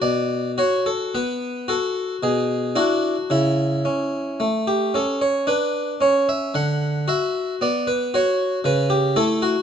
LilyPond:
\new Staff \with { instrumentName = "Harpsichord" } { \time 3/4 \key b \minor \tempo 4 = 56 << { d''8 cis''16 a'16 b'8 a'8 gis'8 fis'8 | e'4~ e'16 g'16 a'16 cis''16 b'8 cis''16 e''16 | fis''8 e''8 d''16 b'16 cis''8 b'16 g'16 a'16 fis'16 | } \\ { b,8 fis'8 b8 fis'8 b,8 <d' e'>8 | cis8 cis'8 a8 cis'8 d'8 cis'8 | d8 fis'8 b8 fis'8 cis8 <a e'>8 | } >> }